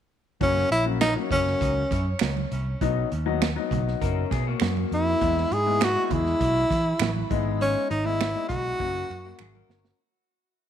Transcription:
0.41 0.63 F#1 loud
0.41 0.65 F#3 medium
0.41 0.65 A#3 medium
0.41 0.65 C#4 medium
0.41 0.70 C#4 medium
0.41 kick loud
0.41 closed hi-hat medium
0.41 muted conga soft
0.57 snare soft
0.71 1.15 A#1 medium
0.71 0.85 E4 medium
0.71 closed hi-hat medium
0.86 1.02 F#3 medium
0.86 1.02 A#3 medium
0.86 1.02 C#4 medium
1.01 1.15 D#4 medium
1.01 finger snap loud
1.01 snare loud
1.01 closed hi-hat medium
1.01 high conga soft
1.16 1.80 F#3 medium
1.16 1.80 A#3 medium
1.16 1.80 C#4 medium
1.31 1.53 F#1 medium
1.31 2.18 C#4 medium
1.31 kick medium
1.31 closed hi-hat medium
1.31 low conga medium
1.47 snare soft
1.61 1.83 C#2 medium
1.61 kick medium
1.61 closed hi-hat medium
1.91 2.13 F#2 medium
1.91 kick medium
1.91 snare soft
1.91 closed hi-hat medium
1.91 muted conga soft
2.19 2.44 C#2 medium
2.19 finger snap medium
2.19 snare loud
2.19 closed hi-hat medium
2.19 high conga medium
2.37 high conga medium
2.52 2.73 C2 medium
2.52 closed hi-hat medium
2.81 3.03 B1 medium
2.81 3.05 F#3 medium
2.81 3.05 B3 medium
2.81 3.06 D#4 loud
2.81 kick medium
2.81 closed hi-hat medium
2.81 muted conga soft
3.12 3.56 D#2 medium
3.12 closed hi-hat medium
3.12 muted conga soft
3.26 3.42 F#3 medium
3.26 3.42 B3 medium
3.26 3.42 D#4 medium
3.42 finger snap medium
3.42 snare loud
3.42 closed hi-hat medium
3.42 high conga medium
3.56 4.20 F#3 medium
3.56 4.20 B3 medium
3.56 4.21 D#4 medium
3.71 3.93 B1 medium
3.71 kick medium
3.71 closed hi-hat medium
3.71 low conga medium
3.88 snare soft
4.01 4.23 F#1 medium
4.01 4.31 C#4 medium
4.01 4.30 A#4 medium
4.01 kick medium
4.01 closed hi-hat loud
4.31 4.53 B2 medium
4.31 4.46 B3 medium
4.31 4.46 G#4 medium
4.31 kick medium
4.31 snare soft
4.31 closed hi-hat medium
4.31 muted conga soft
4.47 5.19 A#3 medium
4.47 5.18 F#4 medium
4.60 4.83 F#2 medium
4.60 finger snap medium
4.60 snare loud
4.60 closed hi-hat medium
4.60 high conga medium
4.77 high conga medium
4.91 5.13 F2 medium
4.91 5.54 E4 medium
4.91 closed hi-hat medium
5.21 5.43 E2 medium
5.21 5.45 G#3 medium
5.21 5.45 B3 medium
5.21 5.45 E4 medium
5.21 kick medium
5.21 closed hi-hat medium
5.21 muted conga soft
5.38 snare soft
5.51 5.95 G#2 medium
5.51 5.85 G#4 medium
5.51 closed hi-hat medium
5.51 muted conga soft
5.66 5.82 G#3 medium
5.66 5.82 B3 medium
5.66 5.82 E4 medium
5.81 6.05 F#4 loud
5.81 finger snap loud
5.81 snare loud
5.81 closed hi-hat medium
5.81 high conga medium
5.96 6.60 G#3 medium
5.96 6.60 B3 medium
5.96 6.60 E4 medium
6.05 6.14 F#4 medium
6.10 6.33 E2 medium
6.10 7.31 E4 medium
6.10 kick medium
6.10 closed hi-hat medium
6.10 low conga medium
6.26 snare soft
6.41 6.63 B1 medium
6.41 kick medium
6.41 closed hi-hat medium
6.71 6.93 E3 medium
6.71 kick medium
6.71 snare soft
6.71 closed hi-hat medium
6.71 muted conga soft
7.00 7.22 A1 medium
7.00 finger snap loud
7.00 snare loud
7.00 closed hi-hat medium
7.00 high conga medium
7.16 high conga medium
7.30 7.74 G#1 medium
7.30 7.91 G#3 medium
7.30 7.90 B3 medium
7.30 7.90 D#4 medium
7.30 kick loud
7.30 closed hi-hat medium
7.61 7.89 C#4 medium
7.61 closed hi-hat medium
7.61 muted conga soft
7.91 8.34 G#1 medium
7.91 8.07 D#4 medium
7.91 closed hi-hat medium
7.91 muted conga soft
8.05 8.21 G#3 medium
8.05 8.21 B3 medium
8.05 8.21 D#4 medium
8.05 8.48 E4 loud
8.21 finger snap loud
8.21 snare loud
8.21 closed hi-hat medium
8.21 high conga medium
8.35 8.80 G#3 medium
8.35 8.80 B3 medium
8.35 8.80 D#4 medium
8.49 8.72 B1 medium
8.49 9.65 F#4 loud
8.49 kick medium
8.49 closed hi-hat medium
8.49 low conga medium
8.80 9.02 F#1 loud
8.80 9.75 F#3 medium
8.80 9.75 A#3 medium
8.80 9.75 C#4 medium
8.80 kick medium
9.10 9.32 F#2 loud
9.10 muted conga soft
9.25 9.39 A#3 medium
9.25 9.39 F#4 medium
9.39 9.61 G#1 medium
9.39 9.54 G#4 medium
9.39 finger snap medium
9.39 high conga medium
9.55 9.98 C#4 medium
9.55 9.97 A#4 medium
9.55 high conga medium
9.69 9.91 G1 medium
9.69 snare medium
9.85 snare medium

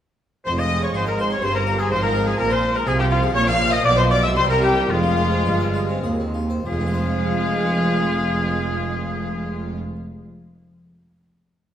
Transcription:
0.46 0.92 F1 medium
0.46 0.91 F2 medium
0.46 0.92 F2 medium
0.46 1.40 G#3 medium
0.46 0.61 C5 loud
0.46 0.58 C5 loud
0.46 0.51 C6 loud
0.58 0.71 F4 medium
0.58 0.83 D#5 loud
0.58 0.84 D#5 medium
0.58 0.83 D#6 loud
0.70 0.83 G#4 medium
0.81 0.95 C4 medium
0.81 0.96 C#5 medium
0.81 0.89 C#5 medium
0.81 0.95 C#6 medium
0.94 1.42 G#1 medium
0.94 1.39 G#2 medium
0.94 1.42 G#2 medium
0.94 1.07 F4 medium
0.94 1.00 C5 loud
0.94 1.07 C5 loud
0.94 1.07 C6 loud
1.06 1.20 A#4 medium
1.06 1.20 C5 medium
1.06 1.19 A#5 medium
1.18 1.32 F4 medium
1.18 1.32 C5 medium
1.18 1.26 C5 medium
1.18 1.31 C6 loud
1.30 1.43 C4 medium
1.30 1.44 C#5 medium
1.30 1.46 C#5 medium
1.30 1.43 C#6 medium
1.42 1.90 G1 medium
1.42 1.87 G2 medium
1.42 1.90 G2 medium
1.42 1.92 G3 medium
1.42 1.55 G#4 medium
1.42 1.55 C5 loud
1.42 1.56 C5 medium
1.42 1.55 C6 loud
1.54 1.68 C4 medium
1.54 1.81 A#4 medium
1.54 1.80 A#4 medium
1.54 1.79 A#5 loud
1.67 1.80 F4 medium
1.78 1.91 G#4 medium
1.78 1.91 C5 medium
1.78 1.91 G#5 medium
1.90 2.38 G#1 medium
1.90 2.35 G#2 medium
1.90 2.38 G#2 medium
1.90 2.39 F3 medium
1.90 2.03 C5 loud
1.90 2.04 C5 loud
1.90 2.02 C6 loud
2.02 2.15 C4 medium
2.02 2.26 A#4 medium
2.02 2.27 A#4 medium
2.02 2.27 A#5 loud
2.15 2.28 F4 medium
2.26 2.39 G#3 medium
2.26 2.39 G#4 medium
2.26 2.40 G#4 medium
2.26 2.39 G#5 loud
2.38 2.86 A#1 medium
2.38 2.83 A#2 medium
2.38 2.86 A#2 medium
2.38 2.86 F3 medium
2.38 2.51 C4 medium
2.38 2.51 A#4 medium
2.38 2.54 A#4 loud
2.38 2.51 A#5 loud
2.50 2.64 G#4 medium
2.50 2.75 C5 medium
2.50 2.77 C5 medium
2.50 2.75 C6 loud
2.63 2.76 C4 medium
2.75 2.88 G#3 medium
2.75 2.88 A#4 medium
2.75 2.89 A#4 loud
2.75 2.80 A#5 loud
2.86 3.34 C2 loud
2.86 3.31 C3 medium
2.86 3.35 C3 loud
2.86 4.33 F3 medium
2.86 3.00 F4 medium
2.86 2.92 G#4 loud
2.86 2.99 G#4 loud
2.86 2.92 G#5 loud
2.99 3.12 G#3 medium
2.99 3.05 G4 medium
2.99 3.11 G5 loud
3.11 3.24 C4 medium
3.11 3.22 F4 medium
3.11 3.19 F4 medium
3.11 3.35 F5 loud
3.23 3.36 G#4 medium
3.35 3.84 A#1 loud
3.35 3.80 A#2 medium
3.35 3.84 A#2 loud
3.35 3.47 C#5 loud
3.35 3.48 C#5 loud
3.35 3.47 C#6 loud
3.47 3.61 C#4 medium
3.47 3.72 F5 loud
3.47 3.74 F5 medium
3.47 3.72 F6 loud
3.60 3.73 G4 medium
3.72 3.84 D#5 loud
3.72 3.85 D#5 loud
3.72 3.85 D#6 loud
3.84 4.35 B1 medium
3.84 4.32 B2 medium
3.84 4.35 B2 loud
3.84 3.91 D5 loud
3.84 3.97 D5 loud
3.84 3.97 D6 loud
3.97 4.11 B3 medium
3.97 4.10 C5 loud
3.97 4.11 C5 loud
3.97 4.03 C6 loud
4.10 4.24 F4 medium
4.10 4.23 D5 loud
4.10 4.24 D5 medium
4.10 4.23 D6 loud
4.23 4.36 G#3 medium
4.23 4.29 E5 loud
4.23 4.36 E6 loud
4.35 4.90 C2 loud
4.35 4.85 C3 medium
4.35 4.90 C3 medium
4.35 4.89 G3 medium
4.35 4.49 C5 loud
4.35 4.42 C5 loud
4.35 4.49 C6 loud
4.49 4.63 E4 medium
4.49 4.62 A#4 medium
4.49 4.63 A#4 loud
4.49 4.63 A#5 loud
4.62 4.77 G4 medium
4.62 4.91 G4 loud
4.62 4.90 G4 medium
4.62 4.89 G5 loud
4.75 4.89 A#3 medium
4.89 5.45 F1 medium
4.89 5.45 F2 medium
4.89 5.42 F2 medium
4.89 6.41 G#3 medium
4.89 6.03 F4 loud
4.89 6.05 F4 loud
4.89 6.02 F5 loud
5.03 5.18 F4 medium
5.17 5.32 G#4 medium
5.31 5.46 C4 medium
5.45 6.05 G1 medium
5.45 6.00 G2 medium
5.45 6.05 G2 medium
5.45 5.61 F4 medium
5.60 5.76 C5 medium
5.74 5.90 F4 medium
5.89 6.05 C4 medium
6.03 6.62 D#2 medium
6.03 6.66 D#2 medium
6.03 6.20 G#4 medium
6.20 6.36 C4 medium
6.34 6.51 F4 medium
6.50 6.66 C5 medium
6.66 9.77 F1 medium
6.66 9.76 F2 medium
6.66 9.75 F3 medium
6.66 9.77 G#3 medium
6.66 9.77 F4 medium
6.66 9.76 G#4 loud
6.66 9.76 F5 loud
6.73 9.82 G#3 medium
6.80 9.89 C4 medium
6.87 9.96 F4 medium
6.94 10.03 C5 medium

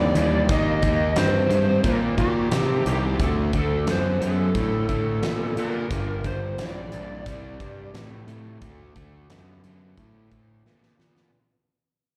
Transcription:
0.00 0.12 D#2 medium
0.00 0.12 G2 medium
0.00 0.13 E3 medium
0.00 0.46 D5 medium
0.15 0.49 D#2 medium
0.15 0.47 G2 medium
0.15 0.47 E3 medium
0.15 closed hi-hat medium
0.49 0.79 D#2 medium
0.49 0.80 D#3 medium
0.49 0.81 A#3 loud
0.49 1.14 D#5 loud
0.49 kick loud
0.49 closed hi-hat medium
0.83 1.13 D#2 medium
0.83 1.14 D#3 medium
0.83 1.13 A#3 medium
0.83 kick medium
0.83 closed hi-hat medium
1.16 1.47 G2 medium
1.16 1.47 D#3 medium
1.16 1.47 C4 medium
1.16 1.81 C5 medium
1.16 snare loud
1.16 closed hi-hat medium
1.49 1.80 G2 medium
1.49 1.81 D#3 medium
1.49 1.81 C4 medium
1.49 closed hi-hat medium
1.84 2.14 A#2 medium
1.84 2.15 D#3 medium
1.84 2.15 A#3 loud
1.84 1.96 A#4 medium
1.84 kick loud
1.84 closed hi-hat medium
2.18 2.48 A#2 medium
2.18 2.49 D#3 medium
2.18 2.49 A#3 medium
2.18 2.88 G4 medium
2.18 kick medium
2.18 closed hi-hat medium
2.52 2.82 C3 medium
2.52 2.83 D#3 medium
2.52 2.83 C4 medium
2.52 snare loud
2.52 closed hi-hat medium
2.86 3.16 C2 medium
2.86 3.17 D#3 medium
2.86 3.17 C4 medium
2.86 3.19 G4 medium
2.86 closed hi-hat medium
3.19 3.49 D2 medium
3.19 3.51 D3 medium
3.19 3.51 A3 medium
3.19 3.32 A4 loud
3.19 kick loud
3.19 closed hi-hat medium
3.53 3.83 D2 medium
3.53 3.85 D3 medium
3.53 3.85 A3 medium
3.53 kick medium
3.53 closed hi-hat medium
3.58 3.90 A4 medium
3.87 4.17 F#2 medium
3.87 4.19 D3 medium
3.87 4.19 B3 medium
3.87 4.24 C5 medium
3.87 snare loud
3.87 closed hi-hat medium
4.21 4.51 F#2 medium
4.21 4.52 D3 medium
4.21 4.52 B3 medium
4.21 5.59 A4 medium
4.21 closed hi-hat medium
4.55 4.85 A2 medium
4.55 4.86 D3 medium
4.55 4.86 A3 loud
4.55 kick loud
4.55 closed hi-hat medium
4.89 5.19 A2 medium
4.89 5.20 D3 medium
4.89 5.20 A3 medium
4.89 kick medium
4.89 closed hi-hat medium
5.22 5.52 A#2 medium
5.22 5.53 D3 medium
5.22 5.54 B3 medium
5.22 snare loud
5.22 closed hi-hat medium
5.56 5.86 A#2 medium
5.56 5.88 D3 medium
5.56 5.88 B3 medium
5.56 6.26 A#4 medium
5.56 closed hi-hat medium
5.91 6.21 G1 medium
5.91 6.22 G2 medium
5.91 6.22 D3 medium
5.91 kick loud
5.91 closed hi-hat loud
6.24 6.54 G1 medium
6.24 6.55 G2 medium
6.24 6.55 D3 medium
6.24 6.60 C5 medium
6.24 kick medium
6.24 closed hi-hat medium
6.58 6.89 A#1 medium
6.58 6.89 G2 medium
6.58 6.89 E3 medium
6.58 7.91 D5 medium
6.58 snare loud
6.58 closed hi-hat medium
6.92 7.23 A#1 medium
6.92 7.23 G2 medium
6.92 7.23 E3 medium
6.92 closed hi-hat medium
7.26 7.56 C2 medium
7.26 7.57 C3 medium
7.26 7.57 G3 loud
7.26 kick loud
7.26 closed hi-hat loud
7.60 7.90 G2 medium
7.60 7.91 C3 medium
7.60 7.91 G3 medium
7.60 kick medium
7.60 closed hi-hat medium
7.94 8.24 A2 medium
7.94 8.25 C3 medium
7.94 8.25 A3 medium
7.94 snare loud
7.94 closed hi-hat medium
8.27 8.58 A2 medium
8.27 8.58 C3 medium
8.27 8.58 A3 medium
8.27 closed hi-hat medium
8.61 8.92 D2 medium
8.61 8.92 D3 medium
8.61 8.93 A3 medium
8.61 kick loud
8.61 closed hi-hat loud
8.96 9.26 D2 medium
8.96 9.27 D3 medium
8.96 9.27 A3 medium
8.96 kick medium
8.96 closed hi-hat medium
9.30 9.60 F#2 medium
9.30 9.60 D3 medium
9.30 9.61 B3 medium
9.30 snare loud
9.30 closed hi-hat medium
9.64 9.94 F#2 medium
9.64 9.95 D3 medium
9.64 9.95 B3 medium
9.64 closed hi-hat medium
9.97 10.28 A2 medium
9.97 10.29 D3 medium
9.97 10.29 A3 loud
9.97 kick loud
9.97 closed hi-hat medium
10.31 10.62 A2 medium
10.31 10.63 D3 medium
10.31 10.63 A3 medium
10.31 kick medium
10.31 closed hi-hat soft
10.66 10.96 A#2 medium
10.66 10.97 D3 medium
10.66 10.97 B3 medium
10.66 snare medium
10.83 snare medium
10.99 11.29 A#2 medium
10.99 11.30 D3 medium
10.99 11.30 B3 medium
10.99 snare medium
11.17 snare medium

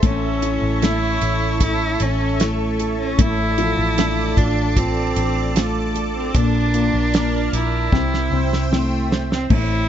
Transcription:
0.00 0.58 A1 medium
0.00 3.18 A2 medium
0.00 0.81 A3 medium
0.00 0.11 C4 medium
0.00 0.42 E4 medium
0.00 1.60 A4 medium
0.00 6.31 A4 medium
0.00 3.15 C#5 medium
0.00 3.15 E5 medium
0.00 3.15 C#6 medium
0.00 kick loud
0.00 closed hi-hat medium
0.05 0.85 C#4 loud
0.42 1.59 E4 medium
0.42 1.20 E4 medium
0.42 closed hi-hat medium
0.62 1.17 A1 medium
0.82 2.36 A3 medium
0.82 1.99 C#4 medium
0.82 1.61 E4 loud
0.82 snare loud
0.82 closed hi-hat medium
1.21 1.96 A1 medium
1.21 2.39 E4 medium
1.21 closed hi-hat medium
1.60 3.14 E4 medium
1.60 2.04 E4 loud
1.60 2.80 A4 medium
1.60 kick medium
1.60 closed hi-hat medium
2.00 3.15 A1 medium
2.00 3.27 C#4 medium
2.00 2.43 C#4 loud
2.00 closed hi-hat medium
2.40 2.99 A3 medium
2.40 3.27 E4 medium
2.40 snare loud
2.40 closed hi-hat medium
2.79 4.76 A4 medium
2.79 closed hi-hat medium
3.00 3.21 C#4 loud
3.18 3.74 A1 loud
3.18 6.34 A2 medium
3.18 3.96 A3 medium
3.18 4.40 E4 loud
3.18 6.31 D5 medium
3.18 7.88 A5 medium
3.18 7.88 D6 medium
3.18 kick loud
3.18 closed hi-hat loud
3.58 5.12 F3 medium
3.58 4.37 F4 medium
3.58 closed hi-hat medium
3.77 4.33 A1 medium
3.98 5.52 A3 medium
3.98 5.16 D4 medium
3.98 snare loud
3.98 closed hi-hat medium
4.37 5.12 A1 loud
4.37 4.79 D4 loud
4.37 5.55 F4 medium
4.37 kick medium
4.37 closed hi-hat medium
4.76 5.59 C4 loud
4.76 6.30 F4 medium
4.76 5.93 A4 medium
4.76 kick medium
4.76 closed hi-hat medium
5.16 6.31 A1 loud
5.16 6.42 D4 medium
5.16 closed hi-hat medium
5.55 6.16 A3 medium
5.55 6.42 F4 medium
5.55 snare loud
5.55 closed hi-hat medium
5.95 6.42 A4 medium
5.95 closed hi-hat medium
6.16 6.37 C4 medium
6.34 6.90 A#1 medium
6.34 7.92 A#2 medium
6.34 6.72 A#3 medium
6.34 7.54 D4 loud
6.34 7.91 A#4 medium
6.34 7.91 D5 medium
6.34 kick loud
6.34 closed hi-hat loud
6.74 7.12 A#3 medium
6.74 7.53 F4 medium
6.74 closed hi-hat medium
6.94 7.49 A#1 medium
7.14 7.90 A#3 medium
7.14 8.00 D4 medium
7.14 snare loud
7.14 closed hi-hat medium
7.53 7.90 A#1 loud
7.53 8.68 E4 medium
7.53 closed hi-hat medium
7.91 8.29 C2 loud
7.91 9.50 C3 medium
7.91 8.31 C4 medium
7.91 9.48 C5 medium
7.91 9.48 E5 medium
7.91 9.48 G5 medium
7.91 9.48 E6 medium
7.91 kick medium
7.91 snare medium
8.14 snare medium
8.31 9.46 C2 medium
8.31 9.89 C4 medium
8.31 8.70 C4 medium
8.53 snare medium
8.71 9.28 A3 medium
8.71 9.48 C4 medium
8.71 9.89 E4 medium
8.71 snare medium
9.11 9.89 C5 medium
9.11 snare loud
9.32 9.50 C4 medium
9.32 snare medium
9.50 9.89 A1 loud
9.50 9.89 A2 medium
9.50 9.89 A3 medium
9.50 9.89 E4 loud
9.50 kick loud
9.50 crash loud

